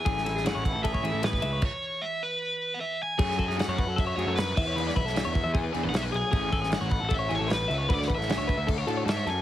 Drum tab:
CC |----------------|x---------------|x-x-x-x-x-x-x-x-|x-x-x-x-x-x-x-x-|
RD |x-x-x-x-x-x-x-x-|----------------|----------------|----------------|
SD |-oooo-------oo--|----------------|-o-oo-------o---|-o-oo-------o---|
BD |o-----o-oo---o--|o---------------|o-o---o-o-----o-|--o---o-o-------|

CC |x-x-x-x-x-x-x-x-|x-x-x-x-x-x-x-x-|
RD |----------------|----------------|
SD |---oo-------o---|-o-oo-------o---|
BD |o-o---o-o-------|o-o---o-o-------|